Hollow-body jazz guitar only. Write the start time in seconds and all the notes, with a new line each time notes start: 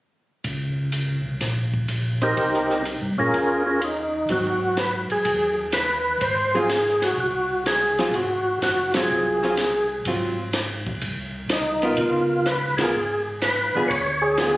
4.30 F#3 C4
6.55 F#3 C4 F4
7.99 F#3 C4 F4
8.95 F#3 C4 F4
9.43 F#3 C4 F4
10.07 F#3 C4 F4
11.83 B3 F4 A#4
12.80 B3 F4 A#4
13.75 D3 B3 F4 G#4
14.39 D3 B3 F4 G#4